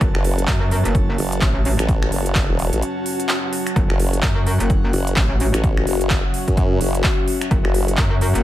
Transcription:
Already playing: F#3 C#4 F#4 B4 A5
0.01 F#1, kick, closed hi-hat
0.15 F#1, finger snap
0.25 open hi-hat
0.38 closed hi-hat
0.47 F#2, kick, clap, closed hi-hat
0.71 open hi-hat
0.85 F#1, closed hi-hat
0.95 kick, closed hi-hat
1.18 F#1, open hi-hat
1.32 closed hi-hat
1.41 A1, kick, clap, closed hi-hat
1.65 open hi-hat
1.79 A1, finger snap, closed hi-hat
1.89 kick, closed hi-hat
2.03 finger snap
2.12 F#1, open hi-hat
2.26 closed hi-hat
2.35 kick, clap, closed hi-hat
2.49 E1
2.59 open hi-hat
2.73 A1, closed hi-hat
2.82 closed hi-hat, swell
3.06 open hi-hat
3.20 closed hi-hat
3.29 clap, closed hi-hat
3.53 open hi-hat
3.67 finger snap, closed hi-hat
3.76 F#1 F#4, kick, closed hi-hat
3.90 F#1 F#5, finger snap
4.00 open hi-hat
4.13 closed hi-hat
4.23 F#2, kick, clap, closed hi-hat
4.47 open hi-hat
4.60 F#1, closed hi-hat
4.70 kick, closed hi-hat
4.93 F#1, open hi-hat
5.07 closed hi-hat
5.16 A1, kick, clap, closed hi-hat
5.40 open hi-hat
5.54 A1, finger snap, closed hi-hat
5.64 kick, closed hi-hat
5.77 finger snap
5.83 F#1 E5, open hi-hat
6.01 closed hi-hat
6.10 kick, clap, closed hi-hat
6.34 open hi-hat
6.48 F#2, kick, closed hi-hat
6.57 kick, closed hi-hat
6.81 F#1, open hi-hat
6.95 closed hi-hat
7.04 kick, clap, closed hi-hat
7.28 open hi-hat
7.41 finger snap, closed hi-hat
7.51 F#1, kick, closed hi-hat
7.65 F#1, finger snap
7.74 open hi-hat
7.88 closed hi-hat
7.97 F#2, kick, clap, closed hi-hat
8.21 open hi-hat
8.35 F#1, closed hi-hat

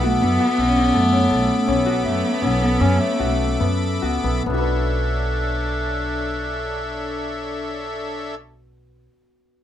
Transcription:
Already playing: B1 B3 D4 A4 E5 B5 D6
0.03 A3 F#4
0.21 F#2 B3 D4
0.40 F#4
0.58 B1 C#4
0.76 D4
0.94 F#2 A3 A4
1.12 C#4
1.31 B1 A3 A4
1.67 B1 B3 C#4
1.86 F#4
2.05 F#2 A3
2.42 B1 B3 C#4
2.61 A4
2.80 F#2 C#4
2.99 A3
3.20 B1 F#4
3.60 F#2 B3
4.02 C#2 B3 F#4
4.24 B1 B3
4.45 B1 B3 D4 A4 C#5 E5
4.50 D4
4.54 F#4 B4

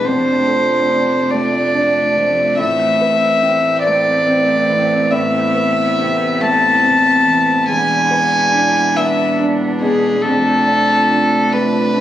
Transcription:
Already playing: D4
0.03 F1 F2 A3 F4 A4 C5
0.48 A4
0.90 D4
1.31 A3 D5
1.74 D4
2.17 F3
2.58 A1 A2 A3 C4 E4 B4 E5
3.01 B4
3.43 C4
3.82 A3 D5
4.28 C4
4.69 E3
5.11 A2 B3 E5
5.55 B4
5.99 C3
6.41 A3 A5
6.83 C3
7.25 E3
7.67 E1 E2 D4 E4 B4 G#5
8.11 B4
8.53 D4
8.96 B3 E5
9.40 D4
9.81 B2 G#4
10.22 F1 F2 A3 F4 A4
10.68 D5
11.11 D4
11.52 A3 B4
11.96 D4

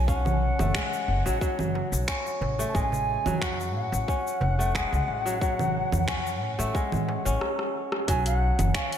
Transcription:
Already playing: B1 F#3 G#3
0.06 C#4 F#5, kick, shaker
0.25 darbuka ka, darbuka dum, low conga, shaker
0.59 F#1 A3, darbuka tek, low conga, shaker
0.75 G#3, finger snap, kick, shaker
0.93 shaker
1.08 F#1, darbuka ka
1.26 A1 F#3, darbuka tek, shaker
1.41 F#3, kick, shaker
1.59 F#1, low conga, shaker
1.75 darbuka tek
1.92 B1, darbuka tek, shaker
2.08 C#4, finger snap, kick, shaker
2.26 shaker
2.41 A1, darbuka tek, darbuka dum
2.59 A3, darbuka ka, shaker
2.68 A5
2.74 A1 G#3 G#5, kick, shaker
2.92 darbuka ka, darbuka dum, shaker
3.26 F2 F#3, low conga, shaker
3.42 F#4 F#5, finger snap, kick, shaker
3.60 shaker
3.75 A2 F#5, darbuka ka
3.92 A1, darbuka tek, shaker
4.08 C#4, kick, shaker
4.27 shaker
4.41 F1, darbuka ka, darbuka tek, darbuka dum
4.59 A3, shaker
4.75 G#3, finger snap, kick, darbuka ka, shaker
4.92 C#2, shaker
5.08 A1
5.26 F#3, shaker
5.41 F#3, kick, shaker
5.59 darbuka ka, darbuka dum, low conga, shaker
5.92 F2, darbuka tek, low conga, shaker
6.08 C#4, finger snap, kick, shaker
6.27 shaker
6.41 A2, darbuka ka
6.59 A1 A3, darbuka tek, shaker
6.75 G#3, kick, shaker
6.92 A2, low conga, shaker
7.09 darbuka tek
7.25 A1 C#4, darbuka tek, shaker
7.41 cross-stick
7.59 cross-stick
7.92 cross-stick
8.08 B1 F#3 G#5, kick, closed hi-hat, shaker
8.26 F#5, closed hi-hat, shaker
8.59 F#1, closed hi-hat, low conga, shaker
8.75 C#4 F5, finger snap, kick, closed hi-hat, shaker
8.92 F#5, closed hi-hat, shaker

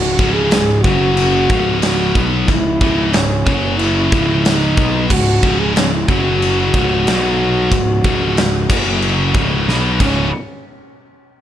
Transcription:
Already playing: C#1 C#2 G#2 F#4
0.19 C#1 C#2 G#2 C#3, kick
0.33 G#4
0.51 C#1 C#2 G#2, snare, china
0.82 F#1 F#2 F#4, kick
0.86 C#3 F#3
1.17 china
1.49 C#1 C#2 G#2 C#3, kick
1.82 F#4, snare, china
2.15 B1 B2 F#3 B3, kick
2.47 C#1 C#2 G#2 E4, kick, china
2.81 C#1 C#2 G#2 C#3, kick
3.13 C#1 C#2 G#2 C#4, snare, china
3.47 F#1 F#2 C#3 F#3, kick
3.78 E4, china
4.12 C#1 C#2 G#2 C#3, kick
4.45 E4, snare, china
4.56 D#4
4.77 B1 B2 F#3 B3, kick
5.10 C#1 C#2 G#2 F#4, kick, crash, china
5.43 C#1 C#2 G#2 C#3, kick
5.59 G#4
5.76 C#1 C#2 G#2 C#4, snare, china
5.93 E4
6.08 F#1 F#2 C#3 F#3 F#4, kick
6.42 china
6.74 C#1 C#2 G#2 C#3, kick
7.07 B1 B2 F#3 B3, snare, china
7.71 C#1 C#2 G#2, kick, china
8.04 C#1 C#2 G#2 C#3, kick
8.37 C#1 C#2 G#2, snare, china
8.70 F#1 F#2 C#3 F#3, kick, crash
9.02 china
9.34 C#1 C#2 G#2 C#3, kick
9.68 B1 B2 F#3 B3, snare
10.00 C#1 C#2 G#2 C#3 C#4, kick, crash

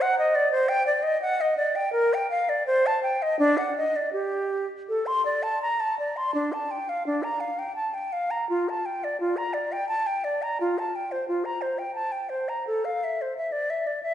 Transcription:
0.01 F#5
0.19 D#5
0.35 D5
0.52 C5
0.69 G5
0.87 D5
1.03 D#5
1.22 F#5
1.41 D#5
1.57 D5
1.76 G5
1.92 A#4
2.14 G5
2.31 F5
2.49 D5
2.67 C5
2.86 A5
3.03 G5
3.22 D#5
3.39 D4
3.58 F#5
3.78 D#5
3.96 D5
4.13 G4
4.89 A4
5.06 C6
5.26 D5
5.43 A5
5.62 A#5
5.80 A5
5.99 D5
6.17 C6
6.34 D4
6.53 A5
6.71 G5
6.89 F5
7.07 D4
7.23 A#5
7.40 F5
7.59 G5
7.76 A5
7.94 G5
8.13 F5
8.31 A#5
8.49 F4
8.69 A5
8.86 G5
9.04 D5
9.20 F4
9.37 A#5
9.54 D5
9.72 G5
9.89 A5
10.07 G5
10.24 D5
10.42 A#5
10.60 F4
10.79 A5
10.95 G5
11.12 C5
11.28 F4
11.45 A#5
11.62 C5
11.79 G5
11.95 A5
12.12 G5
12.29 C5
12.49 A#5
12.67 A4
12.85 F5
13.04 E5
13.22 C5
13.37 E5
13.52 D5
13.70 E5
13.87 D5
14.03 E5

